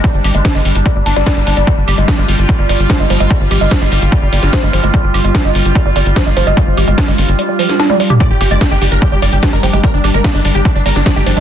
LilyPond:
<<
  \new Staff \with { instrumentName = "Supersaw synth" } { \time 4/4 \key c \minor \tempo 4 = 147 r1 | r1 | r1 | r1 |
r1 | d''16 g'16 g'16 d''16 g'16 g'16 g'16 bes'16 g'16 g'16 d''16 g'16 g'16 bes'16 g'16 g'16 | bes'16 d'16 d'16 bes'16 d'16 d'16 d'16 g'16 d'16 d'16 bes'16 d'16 d'16 g'16 d'16 d'16 | }
  \new Staff \with { instrumentName = "Synth texture" } { \time 4/4 \key c \minor <g d'>1 | f'1~ | f'1~ | f'1~ |
f'1 | <g d'>1~ | <g d'>1 | }
  \new Staff \with { instrumentName = "Synth arpeggio sound" } { \clef bass \time 4/4 \key c \minor g16 r16 g'16 aes16 f16 aes16 r8 g16 g16 d'16 g16 r16 g16 d'16 g16 | r8 g'16 aes16 f16 aes16 r8 g16 g16 g16 r16 f16 aes16 f16 aes16 | g16 r16 g'16 aes16 f16 aes16 r8 g16 g16 g16 r16 f16 aes16 f16 aes16 | g16 r16 g'16 aes16 f16 aes16 r8 g16 g16 g16 r16 f16 aes16 f16 aes16 |
g16 r16 g'16 aes16 f16 aes16 r8 g16 g16 f16 r16 d'16 g16 g16 g'16 | g16 r16 g'16 aes16 bes16 aes16 r8 g16 g16 g16 r16 f16 aes16 f16 aes16 | g16 r16 g'16 aes16 bes16 aes16 r8 g16 g16 g16 r16 f16 aes16 f16 aes16 | }
  \new Staff \with { instrumentName = "Analog synth bass" } { \clef bass \time 4/4 \key c \minor r16 g,,16 aes,,16 g,,16 r16 g,,16 g,,16 g,,16 r16 g,,16 g,,16 g,,16 r16 g,,16 g,,16 g,,16 | r16 g,,16 g,,16 g,,16 r16 g,,16 g,,16 g,,16 r16 g,,16 g,,16 g,,16 r16 g,,16 g,,16 g,,16 | r16 g,,16 aes,,16 g,,16 r16 g,,16 g,,16 g,,16 r16 g,,16 g,,16 g,,16 r16 g,,16 g,,16 g,,16 | r16 g,,16 g,,16 g,,16 r16 g,,16 g,,16 g,,16 r16 g,,16 g,,16 g,,16 r16 g,,16 g,,16 g,,16 |
r16 g,,16 aes,,16 g,,16 r16 g,,16 g,,16 g,,16 r2 | r16 g,,16 g,,16 g,,16 r16 g,,16 g,,16 g,,16 r16 g,,16 g,,16 g,,16 r16 g,,16 g,,16 g,,16 | r16 g,,16 aes,,16 g,,16 r16 g,,16 g,,16 g,,16 r16 g,,16 g,,16 g,,16 r16 g,,16 g,,16 g,,16 | }
  \new DrumStaff \with { instrumentName = "Drums" } \drummode { \time 4/4 <hh bd>8 hho16 hh16 <hh bd sn>16 hho16 hho16 hh16 <hh bd>8 hho16 <hh sn>16 <hh bd sn>8 hho16 hh16 | <hh bd>8 hho16 hh16 <hh bd sn>8 hho16 hh16 <hh bd>8 hho16 hh16 <hh bd sn>8 hho16 hh16 | <hh bd>8 hho16 hh16 <hh bd sn>16 hho16 hho16 hh16 <hh bd>8 hho16 <hh sn>16 <hh bd sn>8 hho16 hh16 | <hh bd>8 hho16 hh16 <hh bd sn>8 hho16 hh16 <hh bd>8 hho16 hh16 <hh bd sn>8 hho16 hh16 |
<hh bd>8 hho16 hh16 <hh bd sn>16 hho16 hho16 hh16 hh8 hho16 <hh sn>16 <hh sn>16 tommh16 hho16 <hh toml>16 | <hh bd>8 hho16 hh16 <hh bd sn>8 hho16 hh16 <hh bd>8 hho16 hh16 <hh bd sn>8 hho16 hh16 | <hh bd>8 hho16 hh16 <hh bd sn>16 hho16 hho16 hh16 <hh bd>8 hho16 <hh sn>16 <hh bd sn>8 hho16 hh16 | }
>>